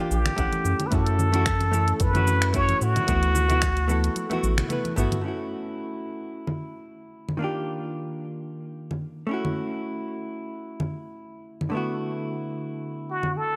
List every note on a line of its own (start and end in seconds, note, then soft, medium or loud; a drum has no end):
0.00 0.34 A#3 medium
0.00 0.35 D4 medium
0.00 0.35 F4 medium
0.00 0.36 G4 loud
0.11 0.29 A#1 loud
0.11 0.88 G4 loud
0.11 cabasa medium
0.26 finger snap medium
0.26 closed hi-hat soft
0.26 muted conga medium
0.26 low conga medium
0.26 cabasa soft
0.36 0.48 A#1 loud
0.36 0.88 A3 loud
0.36 0.89 C#4 medium
0.36 0.89 E4 medium
0.36 0.90 F#5 loud
0.36 kick loud
0.36 closed hi-hat medium
0.36 cabasa soft
0.52 closed hi-hat soft
0.52 high conga medium
0.52 cabasa soft
0.64 0.74 F#2 medium
0.64 muted conga medium
0.64 cabasa medium
0.80 closed hi-hat soft
0.80 low conga medium
0.80 cabasa soft
0.87 1.30 A3 medium
0.87 0.96 B4 medium
0.92 1.93 F#2 loud
0.92 1.30 C#4 medium
0.92 1.31 E4 medium
0.92 1.31 F#4 medium
0.92 2.04 A4 loud
0.92 kick loud
0.92 closed hi-hat medium
0.92 muted conga medium
0.92 high conga medium
0.92 cabasa soft
1.06 closed hi-hat soft
1.06 cabasa soft
1.19 low conga medium
1.19 cabasa medium
1.32 1.43 A3 loud
1.32 1.44 C#4 medium
1.32 1.44 E4 medium
1.32 1.45 F#4 loud
1.32 closed hi-hat soft
1.32 muted conga soft
1.32 high conga medium
1.32 cabasa soft
1.46 finger snap medium
1.46 kick loud
1.46 closed hi-hat medium
1.46 cabasa soft
1.61 closed hi-hat soft
1.61 muted conga medium
1.61 cabasa soft
1.72 2.11 A3 medium
1.72 2.11 C#4 medium
1.72 2.12 E4 medium
1.72 2.12 A4 medium
1.72 high conga medium
1.72 cabasa medium
1.88 closed hi-hat soft
1.88 cabasa soft
2.00 2.74 F#2 loud
2.00 2.58 B4 loud
2.00 kick loud
2.00 closed hi-hat medium
2.00 muted conga medium
2.00 cabasa soft
2.13 2.50 A3 medium
2.13 2.51 C#4 medium
2.13 2.52 E4 medium
2.13 2.52 F#4 loud
2.13 closed hi-hat soft
2.13 high conga medium
2.13 low conga medium
2.13 cabasa soft
2.27 muted conga medium
2.27 cabasa medium
2.42 finger snap medium
2.42 closed hi-hat soft
2.42 cabasa soft
2.53 3.05 A3 loud
2.53 3.05 C#4 medium
2.53 3.06 E4 medium
2.53 3.06 F#4 loud
2.53 2.85 C#5 loud
2.53 kick loud
2.53 closed hi-hat medium
2.53 cabasa soft
2.69 closed hi-hat soft
2.69 muted conga medium
2.69 high conga loud
2.69 cabasa soft
2.81 3.00 A2 medium
2.81 4.71 F#4 loud
2.81 cabasa medium
2.96 closed hi-hat soft
2.96 muted conga medium
2.96 low conga medium
2.96 cabasa soft
3.07 4.09 D2 loud
3.07 3.46 A3 medium
3.07 3.46 B3 medium
3.07 3.47 E4 medium
3.07 3.47 F#4 medium
3.07 kick loud
3.07 closed hi-hat medium
3.07 high conga medium
3.07 cabasa soft
3.23 closed hi-hat soft
3.23 cabasa soft
3.35 muted conga medium
3.35 low conga medium
3.35 cabasa medium
3.48 3.59 A3 medium
3.48 3.60 B3 medium
3.48 3.60 E4 medium
3.48 3.61 F#4 loud
3.48 closed hi-hat soft
3.48 high conga medium
3.48 low conga medium
3.48 cabasa soft
3.62 finger snap medium
3.62 kick loud
3.62 closed hi-hat medium
3.62 muted conga medium
3.62 cabasa soft
3.77 closed hi-hat soft
3.77 cabasa soft
3.88 4.27 A3 medium
3.88 4.27 B3 medium
3.88 4.28 E4 medium
3.88 4.28 A4 medium
3.88 high conga medium
3.88 cabasa medium
4.04 closed hi-hat soft
4.04 muted conga medium
4.04 cabasa soft
4.16 closed hi-hat medium
4.16 high tom medium
4.16 cabasa soft
4.30 4.67 A3 medium
4.30 4.67 B3 medium
4.30 4.68 E4 medium
4.30 4.68 F#4 loud
4.30 closed hi-hat soft
4.30 high tom medium
4.30 muted conga medium
4.30 high conga medium
4.30 cabasa soft
4.43 4.62 A1 loud
4.43 high tom medium
4.43 cabasa medium
4.58 finger snap medium
4.58 closed hi-hat soft
4.58 mid tom medium
4.58 low conga medium
4.58 cabasa soft
4.69 4.94 A3 medium
4.69 4.94 B3 medium
4.69 4.95 E4 medium
4.69 4.96 B4 medium
4.69 closed hi-hat medium
4.69 mid tom medium
4.69 muted conga medium
4.69 cabasa soft
4.85 closed hi-hat soft
4.85 high conga medium
4.85 cabasa soft
4.96 5.07 A1 medium
4.96 5.20 A3 loud
4.96 5.21 B3 medium
4.96 5.22 E4 medium
4.96 5.22 F#4 loud
4.96 mid tom loud
4.96 muted conga medium
4.96 cabasa medium
5.12 closed hi-hat soft
5.12 mid tom medium
5.12 low conga medium
5.12 cabasa soft
5.21 7.36 A3 medium
5.21 7.37 C#4 medium
5.26 7.38 E4 medium
5.26 7.40 F#4 medium
6.47 low conga medium
7.29 low conga soft
7.37 9.25 D#3 medium
7.37 9.26 A#3 medium
7.37 9.27 D4 medium
7.42 9.28 F4 medium
7.42 9.28 G4 medium
8.91 low conga soft
9.27 11.69 A3 medium
9.27 11.70 C#4 medium
9.31 11.71 E4 medium
9.31 11.72 F#4 medium
9.45 low conga soft
10.80 low conga medium
11.61 low conga soft
11.70 13.56 D3 medium
11.70 13.56 A3 medium
11.70 13.56 B3 medium
11.75 13.56 E4 medium
11.75 13.56 F#4 medium
13.11 13.39 F#4 medium
13.23 low conga medium
13.37 13.56 A4 loud